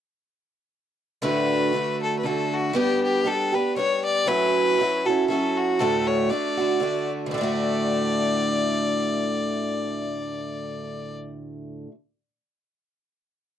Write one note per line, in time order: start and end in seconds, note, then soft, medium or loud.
1.22 1.73 D2 medium
1.22 1.73 A2 medium
1.22 1.72 D3 medium
1.22 1.74 A3 medium
1.22 1.74 D4 medium
1.22 1.74 F#4 medium
1.22 1.98 B4 medium
1.73 2.23 D3 soft
1.73 2.25 A3 soft
1.73 2.24 D4 soft
1.73 2.25 F#4 soft
2.03 2.18 A4 medium
2.19 2.27 B4 medium
2.23 2.73 D3 soft
2.23 2.75 A3 medium
2.23 2.74 D4 soft
2.23 2.76 F#4 medium
2.23 2.55 A4 medium
2.54 2.69 F#4 medium
2.69 3.23 G3 medium
2.69 2.78 F#4 medium
2.75 3.24 B3 medium
2.75 3.25 D4 medium
2.75 3.26 G4 medium
2.75 3.04 G4 medium
3.04 3.29 G4 medium
3.24 3.53 G3 soft
3.24 3.54 B3 soft
3.24 3.53 D4 medium
3.24 3.51 G4 medium
3.24 3.56 A4 medium
3.52 3.76 B3 soft
3.52 3.77 D4 soft
3.52 3.76 G4 medium
3.52 3.76 B4 medium
3.76 4.27 G3 soft
3.76 4.27 B3 soft
3.76 4.27 D4 medium
3.76 4.28 G4 medium
3.76 4.03 C#5 medium
4.05 4.29 D5 loud
4.26 4.77 A2 medium
4.26 4.77 F#3 medium
4.26 4.78 C#4 medium
4.26 4.78 E4 medium
4.26 4.81 F#4 medium
4.26 5.08 B4 loud
4.78 5.06 F#3 soft
4.78 5.06 C#4 soft
4.78 5.06 E4 medium
4.78 5.04 F#4 medium
5.05 5.29 C#4 soft
5.05 5.30 E4 soft
5.05 5.28 F#4 soft
5.05 5.28 A4 medium
5.28 5.80 F#3 soft
5.28 5.80 C#4 soft
5.28 5.81 E4 medium
5.28 5.81 F#4 medium
5.28 5.59 A4 medium
5.57 5.81 F#4 medium
5.79 6.30 D2 medium
5.79 6.31 A2 medium
5.79 6.29 D3 medium
5.79 6.32 A3 medium
5.79 6.30 D4 medium
5.79 6.32 F#4 medium
5.79 6.09 A4 medium
6.07 6.32 C#5 medium
6.29 6.58 D3 soft
6.29 6.57 A3 medium
6.29 6.59 D4 medium
6.29 6.56 F#4 medium
6.29 7.09 D5 medium
6.57 6.79 D3 soft
6.57 6.81 A3 soft
6.57 6.80 D4 soft
6.57 6.81 F#4 soft
6.80 7.34 D3 medium
6.80 7.40 A3 medium
6.80 7.37 D4 soft
6.80 7.43 F#4 medium
7.26 11.86 D2 medium
7.31 11.88 A2 medium
7.31 11.89 D3 medium
7.31 11.14 D5 medium
7.38 11.93 A3 medium
7.38 11.91 D4 medium
7.43 11.94 F#4 medium